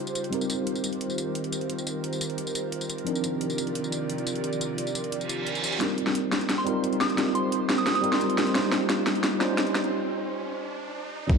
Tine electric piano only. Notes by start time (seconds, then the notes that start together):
Already playing: G3 C#4 D#4 F4 C5
0.30 G3 C4 D#4 F4
0.35 A#4
3.04 F3 C4 D4 D#4
3.09 A#4
5.79 G3 C4 D#4 F4
5.83 A#4
6.64 G3 C4 D#4 F4
6.69 A#4
7.16 G3 C4 D#4 F4
7.20 A#4
8.01 G3 C4 D#4 F4
8.06 A#4
8.53 G3 C#4 D#4 F4
8.57 C5
9.39 G3 C#4 D#4 F4
9.43 C5
11.27 G3 C4 D#4 F4
11.32 A#4